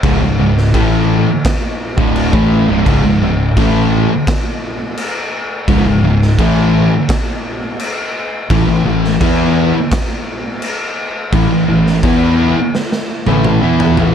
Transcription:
0.03 fingered electric bass C#1, distorted electric guitar C#2 G#2, kick, crash
0.21 fingered electric bass C#1, distorted electric guitar C#2 G#2
0.39 fingered electric bass C#1, distorted electric guitar C#2 G#2
0.58 snare
0.73 fingered electric bass A1, distorted electric guitar A2 E3 A3, kick, crash
1.45 kick, snare, crash
1.97 fingered electric bass D1, distorted electric guitar D2 A2 D3, kick
2.16 crash
2.33 fingered electric bass A1, distorted electric guitar A2 E3 A3, kick
2.69 fingered electric bass C#1, distorted electric guitar C#2 G#2
2.86 fingered electric bass C#1, distorted electric guitar C#2 G#2, kick, crash
3.04 fingered electric bass C#1, distorted electric guitar C#2 G#2
3.22 fingered electric bass C#1, distorted electric guitar C#2 G#2
3.57 fingered electric bass A1, distorted electric guitar A2 E3 A3, kick, crash
4.27 kick, snare, crash
4.97 crash
5.68 fingered electric bass C#1, distorted electric guitar C#2 G#2, kick, crash
5.85 fingered electric bass C#1, distorted electric guitar C#2 G#2
6.03 fingered electric bass C#1, distorted electric guitar C#2 G#2
6.22 snare
6.39 fingered electric bass A1, distorted electric guitar A2 E3 A3, kick, crash
7.09 kick, snare, crash
7.80 crash
8.50 fingered electric bass A1, distorted electric guitar A2 E3, kick, crash
8.68 fingered electric bass A1, distorted electric guitar A2 E3
8.85 fingered electric bass A1, distorted electric guitar A2 E3
9.05 snare
9.21 fingered electric bass E2, distorted electric guitar E3 B3 E4, kick, crash
9.91 kick, snare, crash
10.62 crash
11.33 fingered electric bass A1, distorted electric guitar A2 E3, kick, crash
11.51 fingered electric bass A1, distorted electric guitar A2 E3
11.68 fingered electric bass A1, distorted electric guitar A2 E3
11.87 snare
12.03 fingered electric bass E2, distorted electric guitar E3 B3 E4, kick, crash
12.75 snare
12.92 snare
13.26 fingered electric bass A1, distorted electric guitar A2 E3 A3, high tom
13.44 mid tom
13.62 fingered electric bass E2, distorted electric guitar E3 B3 E4
13.80 floor tom
13.97 fingered electric bass A1, distorted electric guitar A2 E3, floor tom

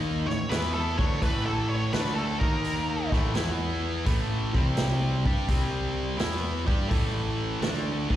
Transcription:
Already playing: picked electric bass D#2, distorted electric guitar D#3 A#3 D#4
0.27 picked electric bass A1, distorted electric guitar A2 E3, lead electric guitar C#5, snare
0.49 picked electric bass E2, distorted electric guitar E3 B3 E4, lead electric guitar B4, snare, open hi-hat
0.73 lead electric guitar A4
0.98 picked electric bass D2, distorted electric guitar D3 A3 D4, lead electric guitar C#5, kick
1.22 picked electric bass A1, distorted electric guitar A2 E3 A3, lead electric guitar B4, kick, open hi-hat
1.46 lead electric guitar A4
1.68 lead electric guitar C#5
1.93 picked electric bass D2, distorted electric guitar D3 A3 D4, lead electric guitar B4, snare, open hi-hat
2.15 lead electric guitar A4
2.40 picked electric bass D#2, distorted electric guitar D#3 A#3 D#4, lead electric guitar A#4, kick
2.64 open hi-hat
3.12 picked electric bass A1, distorted electric guitar A2 E3 A3, kick, snare
3.35 picked electric bass E2, distorted electric guitar E3 B3 E4, snare, open hi-hat
4.06 picked electric bass A1, distorted electric guitar A2 E3 A3, kick, open hi-hat
4.54 picked electric bass C2, distorted electric guitar C3 G3 C4, kick
4.77 snare, open hi-hat
5.26 picked electric bass G2, distorted electric guitar G3 D4 G4, kick
5.48 picked electric bass C2, distorted electric guitar C3 G3 C4, kick, open hi-hat
6.19 picked electric bass E2, distorted electric guitar E3 B3 E4, snare, open hi-hat
6.66 picked electric bass G2, distorted electric guitar G3 D4 G4, kick
6.89 picked electric bass A1, distorted electric guitar A2 E3 A3, kick, open hi-hat
7.61 picked electric bass D2, distorted electric guitar D3 A3 D4, snare, open hi-hat
8.09 picked electric bass D#2, distorted electric guitar D#3 A#3 D#4, kick

